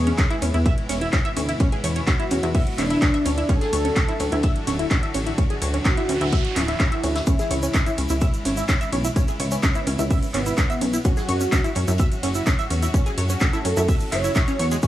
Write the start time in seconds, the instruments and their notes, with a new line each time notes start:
Already playing: analog synth bass E2, string section G#2 B2 E3 B3 E4, analog synth lead G#4
0.07 synth arpeggio sound C#4 C#5, closed hi-hat
0.18 synth arpeggio sound C#4 C#5, kick, snare, clap, closed hi-hat, ride
0.30 synth arpeggio sound E4 E5, closed hi-hat
0.42 analog synth bass E2, synth arpeggio sound C#4 C#5, open hi-hat, ride
0.54 analog synth bass E2, synth arpeggio sound E4 E5, closed hi-hat
0.66 synth arpeggio sound E5 E6, kick, closed hi-hat, ride
0.78 closed hi-hat
0.89 analog synth bass E1, synth arpeggio sound C#4 C#5, snare, open hi-hat, ride
1.01 synth arpeggio sound E4 E5, closed hi-hat
1.13 synth arpeggio sound C#4 C#5, kick, snare, clap, closed hi-hat, ride
1.25 synth arpeggio sound E5 E6, closed hi-hat
1.36 analog synth bass D2, synth arpeggio sound C#4 C#5, open hi-hat, ride
1.49 synth arpeggio sound E4 E5, closed hi-hat
1.60 synth arpeggio sound C#4 C#5, kick, closed hi-hat, ride
1.72 synth arpeggio sound G#4 G#5, closed hi-hat, ride
1.84 analog synth bass E2, synth arpeggio sound C#5 C#6, open hi-hat, ride
1.96 synth arpeggio sound C#4 C#5, closed hi-hat
2.07 synth arpeggio sound C#4 C#5, analog synth lead F#4, kick, snare, clap, closed hi-hat, ride
2.20 synth arpeggio sound E4 E5, closed hi-hat
2.31 analog synth bass E2, synth arpeggio sound C#4 C#5, open hi-hat, ride
2.43 analog synth bass E2, synth arpeggio sound E4 E5, closed hi-hat
2.55 synth arpeggio sound E5 E6, kick, closed hi-hat, open hi-hat, ride
2.67 closed hi-hat
2.78 analog synth bass E1, synth arpeggio sound C#4 C#5, analog synth lead D4, clap, open hi-hat, ride
2.90 synth arpeggio sound E4 E5, closed hi-hat
3.02 synth arpeggio sound C#4 C#5, kick, snare, clap, closed hi-hat, ride
3.14 synth arpeggio sound E5 E6, closed hi-hat
3.26 analog synth bass D2, synth arpeggio sound C#4 C#5, open hi-hat, ride
3.38 synth arpeggio sound E4 E5, closed hi-hat
3.49 string section A2 D3 F#3 D4 F#4, synth arpeggio sound C#4 C#5, analog synth lead A4, kick, closed hi-hat, ride
3.61 synth arpeggio sound G#4 G#5, snare, closed hi-hat
3.73 analog synth bass D2, synth arpeggio sound C#5 C#6, open hi-hat, ride
3.85 synth arpeggio sound C#4 C#5, closed hi-hat
3.96 synth arpeggio sound C#4 C#5, kick, snare, clap, closed hi-hat, ride
4.08 synth arpeggio sound E4 E5, closed hi-hat
4.20 analog synth bass D2, synth arpeggio sound C#4 C#5, open hi-hat, ride
4.32 analog synth bass D2, synth arpeggio sound E4 E5, closed hi-hat
4.43 synth arpeggio sound E5 E6, kick, closed hi-hat, ride
4.56 closed hi-hat
4.67 analog synth bass D1, synth arpeggio sound C#4 C#5, snare, open hi-hat, ride
4.79 synth arpeggio sound E4 E5, closed hi-hat
4.91 synth arpeggio sound C#4 C#5, kick, snare, clap, closed hi-hat, ride
5.03 synth arpeggio sound E5 E6, closed hi-hat
5.14 analog synth bass A1, synth arpeggio sound C#4 C#5, open hi-hat, ride
5.27 synth arpeggio sound E4 E5, closed hi-hat
5.38 synth arpeggio sound C#4 C#5, kick, closed hi-hat, ride, noise sweep
5.50 synth arpeggio sound G#4 G#5, closed hi-hat, ride
5.62 analog synth bass D2, synth arpeggio sound C#5 C#6, open hi-hat, ride
5.74 synth arpeggio sound C#4 C#5, closed hi-hat
5.85 synth arpeggio sound C#4 C#5, analog synth lead F#4, kick, snare, clap, closed hi-hat, ride
5.97 synth arpeggio sound E4 E5, closed hi-hat
6.09 analog synth bass D2, synth arpeggio sound C#4 C#5, open hi-hat, ride
6.21 analog synth bass D2, synth arpeggio sound E4 E5, closed hi-hat
6.32 synth arpeggio sound E5 E6, kick, closed hi-hat, ride
6.45 closed hi-hat
6.56 analog synth bass D1, synth arpeggio sound C#4 C#5, analog synth lead E4, snare, clap, open hi-hat, ride
6.68 synth arpeggio sound E4 E5, closed hi-hat
6.80 synth arpeggio sound C#4 C#5, kick, snare, clap, closed hi-hat, ride
6.92 synth arpeggio sound E5 E6, closed hi-hat
7.03 analog synth bass D2, synth arpeggio sound C#4 C#5, open hi-hat, ride
7.16 synth arpeggio sound E4 E5, snare, closed hi-hat, ride
7.27 string section G#2 C#3 E3 C#4 E4, synth arpeggio sound C#4 C#5, analog synth lead E4, kick, closed hi-hat, ride, shaker
7.39 synth arpeggio sound G#4 G#5, snare, closed hi-hat, shaker
7.51 analog synth bass C#2, synth arpeggio sound C#5 C#6, open hi-hat, ride
7.63 synth arpeggio sound C#4 C#5, closed hi-hat, shaker
7.73 synth arpeggio sound C#4 C#5, kick, snare, clap, closed hi-hat, ride, shaker
7.86 synth arpeggio sound E4 E5, closed hi-hat, shaker
7.98 analog synth bass C#2, synth arpeggio sound C#4 C#5, open hi-hat, ride
8.09 analog synth bass C#2, synth arpeggio sound E4 E5, closed hi-hat, shaker
8.21 synth arpeggio sound E5 E6, kick, closed hi-hat, ride, shaker
8.34 closed hi-hat, shaker
8.45 analog synth bass G#1, synth arpeggio sound C#4 C#5, snare, open hi-hat, ride
8.57 synth arpeggio sound E4 E5, closed hi-hat, shaker
8.69 synth arpeggio sound C#4 C#5, kick, snare, clap, closed hi-hat, ride, shaker
8.81 synth arpeggio sound E5 E6, closed hi-hat, shaker
8.92 analog synth bass B1, synth arpeggio sound C#4 C#5, open hi-hat, ride
9.05 synth arpeggio sound E4 E5, closed hi-hat, shaker
9.16 string section B3, synth arpeggio sound C#4 C#5, kick, closed hi-hat, ride, shaker
9.28 synth arpeggio sound G#4 G#5, closed hi-hat, ride, shaker
9.39 analog synth bass C#2, synth arpeggio sound C#5 C#6, open hi-hat, ride
9.51 synth arpeggio sound C#4 C#5, closed hi-hat, shaker
9.63 analog synth lead C#4, synth arpeggio sound C#4 C#5, kick, snare, clap, closed hi-hat, ride, shaker
9.74 synth arpeggio sound E4 E5, closed hi-hat, shaker
9.87 analog synth bass C#2, synth arpeggio sound C#4 C#5, open hi-hat, ride
9.99 analog synth bass C#2, synth arpeggio sound E4 E5, closed hi-hat, shaker
10.11 synth arpeggio sound E5 E6, kick, closed hi-hat, open hi-hat, ride, shaker
10.23 closed hi-hat, shaker
10.34 analog synth bass G#1, analog synth lead B3, synth arpeggio sound C#4 C#5, clap, open hi-hat, ride
10.46 synth arpeggio sound E4 E5, closed hi-hat, shaker
10.57 synth arpeggio sound C#4 C#5, kick, snare, clap, closed hi-hat, ride, shaker
10.70 synth arpeggio sound E5 E6, closed hi-hat, shaker
10.81 analog synth bass B1, synth arpeggio sound C#4 C#5, open hi-hat, ride
10.94 synth arpeggio sound E4 E5, closed hi-hat, shaker
11.05 string section A2 F#3 C#4 F#4, synth arpeggio sound C#4 C#5, analog synth lead F#4, kick, closed hi-hat, ride, shaker
11.17 synth arpeggio sound G#4 G#5, snare, closed hi-hat, shaker
11.28 analog synth bass F#2, synth arpeggio sound C#5 C#6, open hi-hat, ride
11.41 synth arpeggio sound C#4 C#5, closed hi-hat, shaker
11.52 synth arpeggio sound C#4 C#5, kick, snare, clap, closed hi-hat, ride, shaker
11.64 synth arpeggio sound E4 E5, closed hi-hat, shaker
11.75 analog synth bass F#2, synth arpeggio sound C#4 C#5, open hi-hat, ride
11.88 analog synth bass F#2, synth arpeggio sound E4 E5, closed hi-hat, shaker
11.98 synth arpeggio sound E5 E6, kick, closed hi-hat, ride, shaker
12.00 ride
12.12 closed hi-hat, shaker
12.23 analog synth bass F#1, synth arpeggio sound C#4 C#5, snare, open hi-hat, ride
12.35 synth arpeggio sound E4 E5, closed hi-hat, shaker
12.47 synth arpeggio sound C#4 C#5, kick, snare, clap, closed hi-hat, ride, shaker
12.59 synth arpeggio sound E5 E6, closed hi-hat, shaker
12.70 analog synth bass E2, synth arpeggio sound C#4 C#5, open hi-hat, ride
12.83 synth arpeggio sound E4 E5, closed hi-hat, shaker
12.94 synth arpeggio sound C#4 C#5, kick, closed hi-hat, ride, shaker
13.06 synth arpeggio sound G#4 G#5, closed hi-hat, ride, shaker
13.18 analog synth bass F#2, synth arpeggio sound C#5 C#6, open hi-hat, ride
13.29 synth arpeggio sound C#4 C#5, closed hi-hat, shaker
13.40 synth arpeggio sound C#4 C#5, analog synth lead A4, kick, snare, clap, closed hi-hat, ride, shaker
13.53 synth arpeggio sound E4 E5, closed hi-hat, shaker
13.65 analog synth bass F#2, synth arpeggio sound C#4 C#5, open hi-hat, ride
13.77 analog synth bass F#2, synth arpeggio sound E4 E5, closed hi-hat, shaker
13.88 synth arpeggio sound E5 E6, kick, closed hi-hat, open hi-hat, ride, shaker
14.00 closed hi-hat, shaker
14.12 analog synth bass F#1, synth arpeggio sound E4 E5, analog synth lead C#5, clap, open hi-hat, ride
14.24 synth arpeggio sound E4 E5, closed hi-hat, shaker
14.35 synth arpeggio sound E5 E6, kick, snare, clap, closed hi-hat, ride, shaker
14.48 synth arpeggio sound C#4 C#5, closed hi-hat, shaker
14.59 analog synth bass E2, synth arpeggio sound C#5 C#6, open hi-hat, ride
14.71 synth arpeggio sound G#3 G#4, closed hi-hat, shaker
14.83 string section G#2 B2 E3 B3 E4, synth arpeggio sound C#4 C#5, analog synth lead G#4, kick, closed hi-hat, ride, shaker